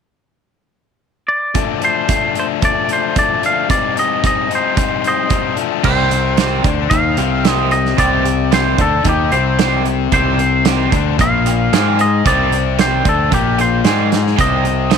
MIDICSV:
0, 0, Header, 1, 7, 480
1, 0, Start_track
1, 0, Key_signature, -3, "minor"
1, 0, Tempo, 534759
1, 1395, Time_signature, 4, 2, 24, 8
1, 13445, End_track
2, 0, Start_track
2, 0, Title_t, "Clean electric guitar"
2, 0, Program_c, 0, 27
2, 1153, Note_on_c, 0, 74, 63
2, 1650, Note_off_c, 0, 74, 0
2, 1657, Note_on_c, 0, 72, 69
2, 2139, Note_off_c, 0, 72, 0
2, 2150, Note_on_c, 0, 72, 68
2, 2211, Note_off_c, 0, 72, 0
2, 2378, Note_on_c, 0, 74, 76
2, 2616, Note_off_c, 0, 74, 0
2, 2629, Note_on_c, 0, 72, 70
2, 2858, Note_off_c, 0, 72, 0
2, 2861, Note_on_c, 0, 74, 76
2, 3098, Note_off_c, 0, 74, 0
2, 3105, Note_on_c, 0, 77, 79
2, 3322, Note_off_c, 0, 77, 0
2, 3326, Note_on_c, 0, 74, 87
2, 3571, Note_off_c, 0, 74, 0
2, 3584, Note_on_c, 0, 75, 71
2, 3820, Note_off_c, 0, 75, 0
2, 3830, Note_on_c, 0, 75, 80
2, 4063, Note_off_c, 0, 75, 0
2, 4085, Note_on_c, 0, 72, 72
2, 4545, Note_off_c, 0, 72, 0
2, 4555, Note_on_c, 0, 72, 85
2, 4561, Note_on_c, 0, 75, 73
2, 4987, Note_off_c, 0, 72, 0
2, 4990, Note_off_c, 0, 75, 0
2, 5250, Note_on_c, 0, 72, 86
2, 6192, Note_on_c, 0, 77, 93
2, 6235, Note_off_c, 0, 72, 0
2, 6740, Note_off_c, 0, 77, 0
2, 6740, Note_on_c, 0, 75, 93
2, 6924, Note_off_c, 0, 75, 0
2, 6927, Note_on_c, 0, 75, 84
2, 7171, Note_off_c, 0, 75, 0
2, 7175, Note_on_c, 0, 74, 98
2, 7661, Note_off_c, 0, 74, 0
2, 7665, Note_on_c, 0, 72, 81
2, 7900, Note_off_c, 0, 72, 0
2, 7909, Note_on_c, 0, 69, 78
2, 8142, Note_off_c, 0, 69, 0
2, 8159, Note_on_c, 0, 67, 74
2, 8366, Note_on_c, 0, 72, 68
2, 8386, Note_off_c, 0, 67, 0
2, 8809, Note_off_c, 0, 72, 0
2, 9098, Note_on_c, 0, 72, 85
2, 10058, Note_off_c, 0, 72, 0
2, 10061, Note_on_c, 0, 77, 99
2, 10777, Note_off_c, 0, 77, 0
2, 10781, Note_on_c, 0, 75, 85
2, 11009, Note_off_c, 0, 75, 0
2, 11013, Note_on_c, 0, 74, 91
2, 11450, Note_off_c, 0, 74, 0
2, 11494, Note_on_c, 0, 72, 82
2, 11731, Note_off_c, 0, 72, 0
2, 11748, Note_on_c, 0, 69, 70
2, 11972, Note_off_c, 0, 69, 0
2, 11975, Note_on_c, 0, 67, 75
2, 12188, Note_off_c, 0, 67, 0
2, 12217, Note_on_c, 0, 72, 70
2, 12650, Note_off_c, 0, 72, 0
2, 12932, Note_on_c, 0, 75, 84
2, 13445, Note_off_c, 0, 75, 0
2, 13445, End_track
3, 0, Start_track
3, 0, Title_t, "Overdriven electric guitar"
3, 0, Program_c, 1, 29
3, 1387, Note_on_c, 1, 53, 69
3, 1395, Note_on_c, 1, 57, 75
3, 1401, Note_on_c, 1, 62, 79
3, 1622, Note_off_c, 1, 62, 0
3, 1625, Note_on_c, 1, 62, 59
3, 1632, Note_off_c, 1, 57, 0
3, 1643, Note_on_c, 1, 57, 48
3, 1849, Note_off_c, 1, 53, 0
3, 1860, Note_on_c, 1, 53, 52
3, 1863, Note_off_c, 1, 57, 0
3, 1873, Note_on_c, 1, 57, 58
3, 1877, Note_off_c, 1, 62, 0
3, 1880, Note_on_c, 1, 62, 66
3, 2102, Note_off_c, 1, 62, 0
3, 2106, Note_on_c, 1, 62, 59
3, 2112, Note_off_c, 1, 57, 0
3, 2123, Note_on_c, 1, 57, 56
3, 2333, Note_off_c, 1, 53, 0
3, 2344, Note_off_c, 1, 57, 0
3, 2344, Note_on_c, 1, 53, 87
3, 2353, Note_off_c, 1, 62, 0
3, 2355, Note_on_c, 1, 57, 87
3, 2364, Note_on_c, 1, 62, 86
3, 2821, Note_off_c, 1, 53, 0
3, 2829, Note_off_c, 1, 57, 0
3, 2831, Note_on_c, 1, 53, 58
3, 2838, Note_off_c, 1, 62, 0
3, 2839, Note_on_c, 1, 57, 58
3, 2849, Note_on_c, 1, 62, 57
3, 3057, Note_off_c, 1, 62, 0
3, 3067, Note_on_c, 1, 62, 63
3, 3076, Note_off_c, 1, 57, 0
3, 3086, Note_on_c, 1, 57, 51
3, 3300, Note_off_c, 1, 62, 0
3, 3302, Note_off_c, 1, 53, 0
3, 3307, Note_on_c, 1, 55, 81
3, 3308, Note_off_c, 1, 57, 0
3, 3312, Note_on_c, 1, 60, 78
3, 3320, Note_on_c, 1, 63, 87
3, 3541, Note_off_c, 1, 63, 0
3, 3552, Note_on_c, 1, 63, 64
3, 3559, Note_off_c, 1, 60, 0
3, 3570, Note_on_c, 1, 60, 46
3, 3786, Note_off_c, 1, 55, 0
3, 3797, Note_on_c, 1, 55, 58
3, 3798, Note_off_c, 1, 60, 0
3, 3803, Note_off_c, 1, 63, 0
3, 3809, Note_on_c, 1, 60, 63
3, 3813, Note_on_c, 1, 63, 70
3, 4018, Note_off_c, 1, 63, 0
3, 4029, Note_on_c, 1, 63, 64
3, 4037, Note_off_c, 1, 60, 0
3, 4047, Note_on_c, 1, 60, 55
3, 4254, Note_off_c, 1, 55, 0
3, 4264, Note_off_c, 1, 60, 0
3, 4264, Note_on_c, 1, 55, 85
3, 4273, Note_off_c, 1, 63, 0
3, 4275, Note_on_c, 1, 60, 82
3, 4283, Note_on_c, 1, 63, 92
3, 4733, Note_off_c, 1, 55, 0
3, 4744, Note_on_c, 1, 55, 63
3, 4749, Note_off_c, 1, 60, 0
3, 4750, Note_off_c, 1, 63, 0
3, 4759, Note_on_c, 1, 60, 54
3, 4761, Note_on_c, 1, 63, 63
3, 4979, Note_off_c, 1, 55, 0
3, 4985, Note_off_c, 1, 63, 0
3, 4987, Note_off_c, 1, 60, 0
3, 4989, Note_on_c, 1, 62, 73
3, 4998, Note_on_c, 1, 57, 72
3, 5006, Note_on_c, 1, 53, 62
3, 5222, Note_off_c, 1, 62, 0
3, 5226, Note_off_c, 1, 57, 0
3, 5230, Note_off_c, 1, 53, 0
3, 5231, Note_on_c, 1, 48, 75
3, 5237, Note_on_c, 1, 60, 96
3, 5950, Note_off_c, 1, 48, 0
3, 5953, Note_off_c, 1, 60, 0
3, 5960, Note_on_c, 1, 50, 80
3, 5963, Note_on_c, 1, 62, 89
3, 6194, Note_off_c, 1, 50, 0
3, 6196, Note_off_c, 1, 62, 0
3, 6200, Note_on_c, 1, 51, 89
3, 6203, Note_on_c, 1, 63, 103
3, 6434, Note_off_c, 1, 51, 0
3, 6435, Note_off_c, 1, 63, 0
3, 6442, Note_on_c, 1, 48, 84
3, 6445, Note_on_c, 1, 60, 98
3, 7150, Note_off_c, 1, 48, 0
3, 7151, Note_off_c, 1, 60, 0
3, 7161, Note_on_c, 1, 48, 83
3, 7162, Note_on_c, 1, 60, 99
3, 7873, Note_off_c, 1, 48, 0
3, 7874, Note_off_c, 1, 60, 0
3, 7883, Note_on_c, 1, 50, 86
3, 7887, Note_on_c, 1, 62, 90
3, 8113, Note_off_c, 1, 50, 0
3, 8117, Note_off_c, 1, 62, 0
3, 8117, Note_on_c, 1, 51, 88
3, 8123, Note_on_c, 1, 63, 106
3, 8351, Note_off_c, 1, 51, 0
3, 8354, Note_off_c, 1, 63, 0
3, 8365, Note_on_c, 1, 48, 84
3, 8370, Note_on_c, 1, 60, 96
3, 9075, Note_off_c, 1, 48, 0
3, 9077, Note_off_c, 1, 60, 0
3, 9087, Note_on_c, 1, 48, 87
3, 9092, Note_on_c, 1, 60, 93
3, 9795, Note_off_c, 1, 48, 0
3, 9797, Note_off_c, 1, 60, 0
3, 9800, Note_on_c, 1, 50, 88
3, 9806, Note_on_c, 1, 62, 99
3, 10032, Note_off_c, 1, 50, 0
3, 10035, Note_off_c, 1, 62, 0
3, 10036, Note_on_c, 1, 46, 87
3, 10039, Note_on_c, 1, 58, 107
3, 10509, Note_off_c, 1, 46, 0
3, 10511, Note_off_c, 1, 58, 0
3, 10525, Note_on_c, 1, 56, 75
3, 10527, Note_on_c, 1, 68, 78
3, 10993, Note_off_c, 1, 56, 0
3, 10994, Note_off_c, 1, 68, 0
3, 10994, Note_on_c, 1, 48, 92
3, 10998, Note_on_c, 1, 60, 99
3, 11706, Note_off_c, 1, 48, 0
3, 11708, Note_off_c, 1, 60, 0
3, 11710, Note_on_c, 1, 50, 82
3, 11714, Note_on_c, 1, 62, 90
3, 11944, Note_off_c, 1, 50, 0
3, 11946, Note_off_c, 1, 62, 0
3, 11951, Note_on_c, 1, 46, 89
3, 11955, Note_on_c, 1, 58, 96
3, 12423, Note_off_c, 1, 46, 0
3, 12425, Note_off_c, 1, 58, 0
3, 12435, Note_on_c, 1, 56, 79
3, 12441, Note_on_c, 1, 68, 77
3, 12904, Note_off_c, 1, 56, 0
3, 12907, Note_off_c, 1, 68, 0
3, 12907, Note_on_c, 1, 48, 72
3, 12911, Note_on_c, 1, 60, 84
3, 13445, Note_off_c, 1, 48, 0
3, 13445, Note_off_c, 1, 60, 0
3, 13445, End_track
4, 0, Start_track
4, 0, Title_t, "Overdriven electric guitar"
4, 0, Program_c, 2, 29
4, 5241, Note_on_c, 2, 51, 67
4, 5244, Note_on_c, 2, 55, 75
4, 5249, Note_on_c, 2, 60, 83
4, 5250, Note_on_c, 2, 67, 83
4, 5482, Note_off_c, 2, 51, 0
4, 5483, Note_off_c, 2, 55, 0
4, 5483, Note_off_c, 2, 67, 0
4, 5486, Note_off_c, 2, 60, 0
4, 5728, Note_on_c, 2, 51, 69
4, 5734, Note_on_c, 2, 55, 75
4, 5737, Note_on_c, 2, 60, 71
4, 5741, Note_on_c, 2, 67, 74
4, 5966, Note_off_c, 2, 51, 0
4, 5968, Note_off_c, 2, 55, 0
4, 5970, Note_off_c, 2, 60, 0
4, 5972, Note_off_c, 2, 67, 0
4, 6690, Note_on_c, 2, 51, 78
4, 6692, Note_on_c, 2, 55, 76
4, 6696, Note_on_c, 2, 60, 81
4, 6698, Note_on_c, 2, 67, 86
4, 6923, Note_off_c, 2, 60, 0
4, 6925, Note_off_c, 2, 67, 0
4, 6926, Note_off_c, 2, 51, 0
4, 6927, Note_off_c, 2, 55, 0
4, 7157, Note_on_c, 2, 51, 78
4, 7165, Note_on_c, 2, 55, 76
4, 7171, Note_on_c, 2, 60, 82
4, 7172, Note_on_c, 2, 67, 87
4, 7396, Note_off_c, 2, 67, 0
4, 7399, Note_off_c, 2, 51, 0
4, 7402, Note_off_c, 2, 60, 0
4, 7403, Note_off_c, 2, 55, 0
4, 7645, Note_on_c, 2, 51, 67
4, 7645, Note_on_c, 2, 55, 75
4, 7647, Note_on_c, 2, 60, 78
4, 7656, Note_on_c, 2, 67, 73
4, 7883, Note_off_c, 2, 51, 0
4, 7883, Note_off_c, 2, 55, 0
4, 7884, Note_off_c, 2, 60, 0
4, 7886, Note_off_c, 2, 67, 0
4, 8608, Note_on_c, 2, 51, 80
4, 8619, Note_on_c, 2, 55, 87
4, 8621, Note_on_c, 2, 60, 85
4, 8622, Note_on_c, 2, 67, 85
4, 8841, Note_off_c, 2, 67, 0
4, 8842, Note_off_c, 2, 55, 0
4, 8844, Note_off_c, 2, 51, 0
4, 8845, Note_off_c, 2, 60, 0
4, 9088, Note_on_c, 2, 51, 72
4, 9092, Note_on_c, 2, 55, 83
4, 9096, Note_on_c, 2, 60, 79
4, 9098, Note_on_c, 2, 67, 86
4, 9323, Note_off_c, 2, 51, 0
4, 9324, Note_off_c, 2, 67, 0
4, 9326, Note_off_c, 2, 55, 0
4, 9328, Note_off_c, 2, 60, 0
4, 9565, Note_on_c, 2, 51, 73
4, 9566, Note_on_c, 2, 55, 74
4, 9573, Note_on_c, 2, 60, 79
4, 9576, Note_on_c, 2, 67, 88
4, 9801, Note_off_c, 2, 51, 0
4, 9801, Note_off_c, 2, 67, 0
4, 9802, Note_off_c, 2, 55, 0
4, 9805, Note_off_c, 2, 60, 0
4, 10531, Note_on_c, 2, 51, 84
4, 10538, Note_on_c, 2, 60, 87
4, 10540, Note_on_c, 2, 55, 83
4, 10544, Note_on_c, 2, 67, 84
4, 10760, Note_off_c, 2, 67, 0
4, 10764, Note_off_c, 2, 51, 0
4, 10767, Note_off_c, 2, 60, 0
4, 10768, Note_off_c, 2, 55, 0
4, 11006, Note_on_c, 2, 51, 70
4, 11010, Note_on_c, 2, 55, 72
4, 11013, Note_on_c, 2, 60, 85
4, 11016, Note_on_c, 2, 67, 83
4, 11238, Note_off_c, 2, 67, 0
4, 11240, Note_off_c, 2, 51, 0
4, 11240, Note_off_c, 2, 55, 0
4, 11244, Note_off_c, 2, 60, 0
4, 11479, Note_on_c, 2, 51, 66
4, 11482, Note_on_c, 2, 55, 73
4, 11483, Note_on_c, 2, 67, 77
4, 11484, Note_on_c, 2, 60, 75
4, 11706, Note_off_c, 2, 67, 0
4, 11711, Note_off_c, 2, 60, 0
4, 11715, Note_off_c, 2, 55, 0
4, 11716, Note_off_c, 2, 51, 0
4, 12431, Note_on_c, 2, 51, 72
4, 12435, Note_on_c, 2, 55, 84
4, 12439, Note_on_c, 2, 60, 83
4, 12442, Note_on_c, 2, 67, 87
4, 12654, Note_off_c, 2, 67, 0
4, 12657, Note_off_c, 2, 55, 0
4, 12658, Note_off_c, 2, 60, 0
4, 12666, Note_off_c, 2, 51, 0
4, 12896, Note_on_c, 2, 51, 70
4, 12905, Note_on_c, 2, 60, 82
4, 12906, Note_on_c, 2, 55, 77
4, 12907, Note_on_c, 2, 67, 75
4, 13136, Note_off_c, 2, 67, 0
4, 13139, Note_off_c, 2, 60, 0
4, 13140, Note_off_c, 2, 55, 0
4, 13142, Note_off_c, 2, 51, 0
4, 13377, Note_on_c, 2, 51, 71
4, 13380, Note_on_c, 2, 55, 68
4, 13387, Note_on_c, 2, 67, 77
4, 13389, Note_on_c, 2, 60, 84
4, 13445, Note_off_c, 2, 51, 0
4, 13445, Note_off_c, 2, 55, 0
4, 13445, Note_off_c, 2, 60, 0
4, 13445, Note_off_c, 2, 67, 0
4, 13445, End_track
5, 0, Start_track
5, 0, Title_t, "Fingered electric bass"
5, 0, Program_c, 3, 33
5, 5237, Note_on_c, 3, 36, 79
5, 5924, Note_off_c, 3, 36, 0
5, 5963, Note_on_c, 3, 38, 82
5, 6186, Note_off_c, 3, 38, 0
5, 6203, Note_on_c, 3, 39, 79
5, 6426, Note_off_c, 3, 39, 0
5, 6440, Note_on_c, 3, 36, 85
5, 7125, Note_off_c, 3, 36, 0
5, 7159, Note_on_c, 3, 36, 86
5, 7844, Note_off_c, 3, 36, 0
5, 7888, Note_on_c, 3, 38, 82
5, 8108, Note_off_c, 3, 38, 0
5, 8120, Note_on_c, 3, 39, 83
5, 8344, Note_off_c, 3, 39, 0
5, 8359, Note_on_c, 3, 36, 89
5, 9043, Note_off_c, 3, 36, 0
5, 9083, Note_on_c, 3, 36, 82
5, 9764, Note_off_c, 3, 36, 0
5, 9802, Note_on_c, 3, 38, 88
5, 10023, Note_off_c, 3, 38, 0
5, 10044, Note_on_c, 3, 34, 90
5, 10487, Note_off_c, 3, 34, 0
5, 10524, Note_on_c, 3, 44, 86
5, 10966, Note_off_c, 3, 44, 0
5, 10999, Note_on_c, 3, 36, 82
5, 11680, Note_off_c, 3, 36, 0
5, 11717, Note_on_c, 3, 38, 84
5, 11938, Note_off_c, 3, 38, 0
5, 11951, Note_on_c, 3, 34, 83
5, 12397, Note_off_c, 3, 34, 0
5, 12427, Note_on_c, 3, 44, 93
5, 12874, Note_off_c, 3, 44, 0
5, 12910, Note_on_c, 3, 36, 76
5, 13445, Note_off_c, 3, 36, 0
5, 13445, End_track
6, 0, Start_track
6, 0, Title_t, "Muted overdriven electric guitar strokes"
6, 5493, Note_on_c, 9, 29, 38
6, 5583, Note_off_c, 9, 29, 0
6, 5986, Note_on_c, 9, 29, 42
6, 6075, Note_off_c, 9, 29, 0
6, 6215, Note_on_c, 9, 29, 43
6, 6304, Note_off_c, 9, 29, 0
6, 6446, Note_on_c, 9, 29, 49
6, 6536, Note_off_c, 9, 29, 0
6, 6934, Note_on_c, 9, 29, 45
6, 7023, Note_off_c, 9, 29, 0
6, 7407, Note_on_c, 9, 29, 42
6, 7497, Note_off_c, 9, 29, 0
6, 7897, Note_on_c, 9, 29, 47
6, 7986, Note_off_c, 9, 29, 0
6, 8136, Note_on_c, 9, 29, 42
6, 8225, Note_off_c, 9, 29, 0
6, 8375, Note_on_c, 9, 29, 52
6, 8464, Note_off_c, 9, 29, 0
6, 8852, Note_on_c, 9, 29, 47
6, 8942, Note_off_c, 9, 29, 0
6, 9334, Note_on_c, 9, 29, 45
6, 9424, Note_off_c, 9, 29, 0
6, 9812, Note_on_c, 9, 29, 43
6, 9901, Note_off_c, 9, 29, 0
6, 10060, Note_on_c, 9, 29, 41
6, 10150, Note_off_c, 9, 29, 0
6, 10295, Note_on_c, 9, 29, 51
6, 10385, Note_off_c, 9, 29, 0
6, 10771, Note_on_c, 9, 29, 39
6, 10861, Note_off_c, 9, 29, 0
6, 11249, Note_on_c, 9, 29, 43
6, 11338, Note_off_c, 9, 29, 0
6, 11717, Note_on_c, 9, 29, 45
6, 11807, Note_off_c, 9, 29, 0
6, 11954, Note_on_c, 9, 29, 40
6, 12043, Note_off_c, 9, 29, 0
6, 12196, Note_on_c, 9, 29, 48
6, 12286, Note_off_c, 9, 29, 0
6, 12665, Note_on_c, 9, 29, 46
6, 12755, Note_off_c, 9, 29, 0
6, 13147, Note_on_c, 9, 29, 47
6, 13237, Note_off_c, 9, 29, 0
6, 13445, End_track
7, 0, Start_track
7, 0, Title_t, "Drums"
7, 1389, Note_on_c, 9, 42, 75
7, 1392, Note_on_c, 9, 36, 89
7, 1479, Note_off_c, 9, 42, 0
7, 1481, Note_off_c, 9, 36, 0
7, 1631, Note_on_c, 9, 42, 52
7, 1721, Note_off_c, 9, 42, 0
7, 1873, Note_on_c, 9, 42, 70
7, 1876, Note_on_c, 9, 36, 92
7, 1962, Note_off_c, 9, 42, 0
7, 1965, Note_off_c, 9, 36, 0
7, 2113, Note_on_c, 9, 42, 54
7, 2203, Note_off_c, 9, 42, 0
7, 2353, Note_on_c, 9, 42, 72
7, 2356, Note_on_c, 9, 36, 94
7, 2443, Note_off_c, 9, 42, 0
7, 2446, Note_off_c, 9, 36, 0
7, 2593, Note_on_c, 9, 42, 56
7, 2683, Note_off_c, 9, 42, 0
7, 2836, Note_on_c, 9, 42, 74
7, 2839, Note_on_c, 9, 36, 89
7, 2926, Note_off_c, 9, 42, 0
7, 2928, Note_off_c, 9, 36, 0
7, 3082, Note_on_c, 9, 42, 55
7, 3171, Note_off_c, 9, 42, 0
7, 3320, Note_on_c, 9, 36, 91
7, 3320, Note_on_c, 9, 42, 78
7, 3410, Note_off_c, 9, 36, 0
7, 3410, Note_off_c, 9, 42, 0
7, 3564, Note_on_c, 9, 42, 57
7, 3654, Note_off_c, 9, 42, 0
7, 3804, Note_on_c, 9, 36, 96
7, 3809, Note_on_c, 9, 42, 73
7, 3894, Note_off_c, 9, 36, 0
7, 3898, Note_off_c, 9, 42, 0
7, 4047, Note_on_c, 9, 42, 57
7, 4137, Note_off_c, 9, 42, 0
7, 4283, Note_on_c, 9, 36, 96
7, 4285, Note_on_c, 9, 42, 69
7, 4373, Note_off_c, 9, 36, 0
7, 4375, Note_off_c, 9, 42, 0
7, 4526, Note_on_c, 9, 42, 50
7, 4616, Note_off_c, 9, 42, 0
7, 4758, Note_on_c, 9, 42, 67
7, 4762, Note_on_c, 9, 36, 92
7, 4847, Note_off_c, 9, 42, 0
7, 4852, Note_off_c, 9, 36, 0
7, 4999, Note_on_c, 9, 42, 51
7, 5088, Note_off_c, 9, 42, 0
7, 5241, Note_on_c, 9, 49, 83
7, 5243, Note_on_c, 9, 36, 90
7, 5331, Note_off_c, 9, 49, 0
7, 5333, Note_off_c, 9, 36, 0
7, 5486, Note_on_c, 9, 42, 60
7, 5576, Note_off_c, 9, 42, 0
7, 5721, Note_on_c, 9, 42, 80
7, 5726, Note_on_c, 9, 38, 104
7, 5811, Note_off_c, 9, 42, 0
7, 5816, Note_off_c, 9, 38, 0
7, 5963, Note_on_c, 9, 42, 62
7, 5964, Note_on_c, 9, 36, 102
7, 6052, Note_off_c, 9, 42, 0
7, 6054, Note_off_c, 9, 36, 0
7, 6199, Note_on_c, 9, 42, 77
7, 6202, Note_on_c, 9, 36, 91
7, 6289, Note_off_c, 9, 42, 0
7, 6292, Note_off_c, 9, 36, 0
7, 6436, Note_on_c, 9, 42, 64
7, 6526, Note_off_c, 9, 42, 0
7, 6683, Note_on_c, 9, 42, 74
7, 6689, Note_on_c, 9, 38, 103
7, 6773, Note_off_c, 9, 42, 0
7, 6779, Note_off_c, 9, 38, 0
7, 6922, Note_on_c, 9, 42, 56
7, 7012, Note_off_c, 9, 42, 0
7, 7050, Note_on_c, 9, 38, 28
7, 7140, Note_off_c, 9, 38, 0
7, 7166, Note_on_c, 9, 36, 96
7, 7167, Note_on_c, 9, 42, 80
7, 7255, Note_off_c, 9, 36, 0
7, 7257, Note_off_c, 9, 42, 0
7, 7409, Note_on_c, 9, 42, 59
7, 7499, Note_off_c, 9, 42, 0
7, 7648, Note_on_c, 9, 42, 74
7, 7653, Note_on_c, 9, 38, 105
7, 7738, Note_off_c, 9, 42, 0
7, 7743, Note_off_c, 9, 38, 0
7, 7884, Note_on_c, 9, 36, 103
7, 7884, Note_on_c, 9, 42, 58
7, 7974, Note_off_c, 9, 36, 0
7, 7974, Note_off_c, 9, 42, 0
7, 8118, Note_on_c, 9, 42, 75
7, 8124, Note_on_c, 9, 36, 87
7, 8208, Note_off_c, 9, 42, 0
7, 8213, Note_off_c, 9, 36, 0
7, 8363, Note_on_c, 9, 42, 57
7, 8453, Note_off_c, 9, 42, 0
7, 8606, Note_on_c, 9, 42, 74
7, 8612, Note_on_c, 9, 38, 104
7, 8696, Note_off_c, 9, 42, 0
7, 8701, Note_off_c, 9, 38, 0
7, 8845, Note_on_c, 9, 42, 53
7, 8934, Note_off_c, 9, 42, 0
7, 9083, Note_on_c, 9, 42, 73
7, 9086, Note_on_c, 9, 36, 93
7, 9173, Note_off_c, 9, 42, 0
7, 9176, Note_off_c, 9, 36, 0
7, 9327, Note_on_c, 9, 42, 59
7, 9417, Note_off_c, 9, 42, 0
7, 9560, Note_on_c, 9, 42, 81
7, 9565, Note_on_c, 9, 38, 97
7, 9649, Note_off_c, 9, 42, 0
7, 9655, Note_off_c, 9, 38, 0
7, 9805, Note_on_c, 9, 36, 104
7, 9808, Note_on_c, 9, 42, 64
7, 9895, Note_off_c, 9, 36, 0
7, 9898, Note_off_c, 9, 42, 0
7, 10045, Note_on_c, 9, 36, 92
7, 10047, Note_on_c, 9, 42, 80
7, 10135, Note_off_c, 9, 36, 0
7, 10137, Note_off_c, 9, 42, 0
7, 10286, Note_on_c, 9, 42, 66
7, 10376, Note_off_c, 9, 42, 0
7, 10530, Note_on_c, 9, 42, 84
7, 10535, Note_on_c, 9, 38, 104
7, 10620, Note_off_c, 9, 42, 0
7, 10625, Note_off_c, 9, 38, 0
7, 10762, Note_on_c, 9, 42, 57
7, 10852, Note_off_c, 9, 42, 0
7, 11001, Note_on_c, 9, 36, 94
7, 11002, Note_on_c, 9, 42, 81
7, 11091, Note_off_c, 9, 36, 0
7, 11092, Note_off_c, 9, 42, 0
7, 11241, Note_on_c, 9, 42, 55
7, 11331, Note_off_c, 9, 42, 0
7, 11478, Note_on_c, 9, 42, 79
7, 11483, Note_on_c, 9, 38, 101
7, 11568, Note_off_c, 9, 42, 0
7, 11573, Note_off_c, 9, 38, 0
7, 11716, Note_on_c, 9, 42, 59
7, 11717, Note_on_c, 9, 36, 103
7, 11806, Note_off_c, 9, 42, 0
7, 11807, Note_off_c, 9, 36, 0
7, 11956, Note_on_c, 9, 36, 95
7, 11958, Note_on_c, 9, 42, 68
7, 12046, Note_off_c, 9, 36, 0
7, 12048, Note_off_c, 9, 42, 0
7, 12195, Note_on_c, 9, 42, 53
7, 12285, Note_off_c, 9, 42, 0
7, 12427, Note_on_c, 9, 42, 71
7, 12432, Note_on_c, 9, 38, 96
7, 12517, Note_off_c, 9, 42, 0
7, 12522, Note_off_c, 9, 38, 0
7, 12674, Note_on_c, 9, 42, 53
7, 12679, Note_on_c, 9, 38, 74
7, 12764, Note_off_c, 9, 42, 0
7, 12769, Note_off_c, 9, 38, 0
7, 12806, Note_on_c, 9, 38, 29
7, 12896, Note_off_c, 9, 38, 0
7, 12913, Note_on_c, 9, 36, 98
7, 12915, Note_on_c, 9, 42, 74
7, 13003, Note_off_c, 9, 36, 0
7, 13005, Note_off_c, 9, 42, 0
7, 13150, Note_on_c, 9, 42, 57
7, 13240, Note_off_c, 9, 42, 0
7, 13382, Note_on_c, 9, 42, 75
7, 13387, Note_on_c, 9, 38, 106
7, 13445, Note_off_c, 9, 38, 0
7, 13445, Note_off_c, 9, 42, 0
7, 13445, End_track
0, 0, End_of_file